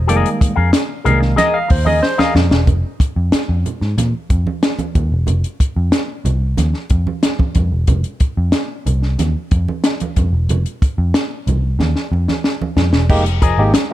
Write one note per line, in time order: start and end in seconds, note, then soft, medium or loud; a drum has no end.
0.07 0.23 F1 loud
0.07 0.52 D#3 medium
0.07 0.52 G3 medium
0.07 0.52 G#3 medium
0.07 0.52 A#3 medium
0.07 0.28 G#4 medium
0.07 0.29 A#4 loud
0.07 0.29 D#5 medium
0.07 closed hi-hat medium
0.07 muted conga soft
0.26 closed hi-hat medium
0.41 muted clean electric guitar stroke soft
0.41 muted picked electric bass stroke soft
0.41 kick loud
0.41 closed hi-hat loud
0.41 muted conga soft
0.56 0.72 F2 medium
0.56 0.71 G#4 medium
0.56 0.71 A#4 medium
0.56 0.72 F5 medium
0.72 muted clean electric guitar stroke soft
0.72 snare loud
0.72 closed hi-hat loud
1.04 1.35 C2 medium
1.04 1.35 D#3 medium
1.04 1.35 G3 medium
1.04 1.35 G#3 soft
1.04 1.35 A#3 medium
1.04 1.21 G#4 medium
1.04 1.20 A#4 medium
1.04 1.20 F5 medium
1.04 closed hi-hat medium
1.04 low conga medium
1.20 muted clean electric guitar stroke medium
1.20 snare soft
1.36 1.57 G#4 medium
1.36 1.58 A#4 medium
1.36 1.58 D#5 loud
1.36 1.55 D#5 loud
1.36 snare soft
1.36 closed hi-hat medium
1.36 muted conga soft
1.36 high conga medium
1.54 1.71 F5 loud
1.68 2.00 D#2 loud
1.68 1.86 C5 medium
1.68 muted clean electric guitar stroke soft
1.68 kick loud
1.68 open hi-hat medium
1.68 muted conga soft
1.85 2.00 G#4 medium
1.85 2.00 A#4 medium
1.85 2.01 D#5 medium
1.85 2.03 D#5 loud
1.85 high conga medium
2.01 2.19 C5 loud
2.01 muted clean electric guitar stroke soft
2.01 snare medium
2.18 2.34 G#4 medium
2.18 2.34 A#4 medium
2.18 2.34 D#5 medium
2.18 2.34 F5 loud
2.18 snare medium
2.18 high conga medium
2.35 2.50 F2 medium
2.35 snare medium
2.35 low conga medium
2.50 2.66 E1 medium
2.50 muted clean electric guitar stroke soft
2.50 snare medium
2.67 2.82 F1 loud
2.67 kick medium
2.67 closed hi-hat medium
2.67 muted conga soft
2.67 low conga medium
3.00 muted picked electric bass stroke soft
3.00 kick medium
3.00 closed hi-hat medium
3.00 muted conga soft
3.16 3.31 F2 medium
3.32 muted picked electric bass stroke soft
3.32 snare loud
3.32 closed hi-hat medium
3.32 muted conga soft
3.49 3.64 F2 medium
3.66 closed hi-hat medium
3.66 low conga medium
3.81 3.96 G#2 medium
3.81 snare soft
3.98 4.12 A#2 medium
3.98 snare soft
3.98 closed hi-hat medium
3.98 high conga medium
4.30 4.45 F2 medium
4.30 kick medium
4.30 closed hi-hat medium
4.47 high conga medium
4.63 snare loud
4.63 closed hi-hat medium
4.63 muted conga soft
4.79 closed hi-hat soft
4.79 high conga medium
4.95 5.10 D#2 medium
4.95 kick medium
4.95 closed hi-hat medium
4.95 muted conga soft
4.95 low conga medium
5.12 5.26 E1 medium
5.27 5.43 F1 loud
5.27 closed hi-hat medium
5.27 muted conga soft
5.27 low conga medium
5.44 closed hi-hat medium
5.60 muted picked electric bass stroke soft
5.60 kick medium
5.60 closed hi-hat medium
5.76 5.91 F2 medium
5.92 snare loud
5.92 closed hi-hat medium
5.92 muted conga soft
6.25 6.54 C2 medium
6.25 closed hi-hat medium
6.25 muted conga soft
6.25 low conga medium
6.57 6.72 D#2 medium
6.57 snare soft
6.57 closed hi-hat medium
6.57 muted conga soft
6.57 high conga medium
6.74 snare soft
6.90 7.05 F2 medium
6.90 kick loud
6.90 closed hi-hat medium
7.07 high conga medium
7.23 snare loud
7.23 closed hi-hat medium
7.23 muted conga soft
7.39 kick medium
7.39 high conga medium
7.55 7.70 F2 medium
7.55 kick medium
7.55 closed hi-hat medium
7.55 muted conga soft
7.55 low conga medium
7.72 7.87 E1 medium
7.87 8.03 F1 loud
7.87 kick medium
7.87 closed hi-hat medium
7.87 muted conga soft
7.87 low conga medium
8.04 closed hi-hat soft
8.20 muted picked electric bass stroke soft
8.20 kick medium
8.20 closed hi-hat medium
8.37 8.52 F2 medium
8.52 snare loud
8.52 closed hi-hat medium
8.86 9.15 C2 medium
8.86 closed hi-hat medium
8.86 muted conga soft
8.86 low conga medium
9.02 snare soft
9.18 9.34 D#2 medium
9.18 snare soft
9.18 closed hi-hat medium
9.18 muted conga soft
9.18 high conga medium
9.51 9.66 F2 medium
9.51 kick medium
9.51 closed hi-hat medium
9.51 muted conga soft
9.68 high conga medium
9.84 snare medium
9.84 closed hi-hat medium
10.00 closed hi-hat medium
10.00 high conga medium
10.16 10.31 F2 medium
10.16 kick medium
10.16 closed hi-hat medium
10.16 muted conga soft
10.16 low conga medium
10.33 10.47 E1 medium
10.49 10.64 F1 loud
10.49 closed hi-hat medium
10.49 muted conga soft
10.49 low conga medium
10.66 closed hi-hat soft
10.82 muted picked electric bass stroke soft
10.82 kick medium
10.82 closed hi-hat medium
10.82 muted conga soft
10.98 11.13 F2 medium
11.14 snare loud
11.14 closed hi-hat medium
11.47 11.76 C2 medium
11.47 closed hi-hat medium
11.47 muted conga soft
11.47 high conga soft
11.47 low conga medium
11.79 11.94 D#2 medium
11.79 snare medium
11.79 high conga medium
11.96 snare soft
12.12 12.26 F2 medium
12.12 muted conga soft
12.28 snare medium
12.28 high conga medium
12.44 snare medium
12.44 muted conga soft
12.62 high conga medium
12.77 12.91 F2 medium
12.77 snare medium
12.77 muted conga soft
12.77 low conga medium
12.93 13.08 E1 medium
12.93 snare medium
13.10 13.53 F1 loud
13.10 13.23 G#3 loud
13.10 13.23 A#3 medium
13.10 13.23 D#4 medium
13.10 13.23 G4 loud
13.10 kick loud
13.10 crash loud
13.10 muted conga soft
13.26 closed hi-hat medium
13.42 13.55 F3 medium
13.42 13.62 G#4 medium
13.42 13.62 A#4 medium
13.42 13.62 D#5 medium
13.42 kick loud
13.42 closed hi-hat medium
13.42 muted conga soft
13.58 13.73 G#1 loud
13.58 13.72 G#3 medium
13.58 13.72 A#3 medium
13.58 13.72 D#4 medium
13.58 13.72 G4 medium
13.74 muted clean electric guitar stroke soft
13.74 snare loud
13.74 closed hi-hat loud
13.74 muted conga soft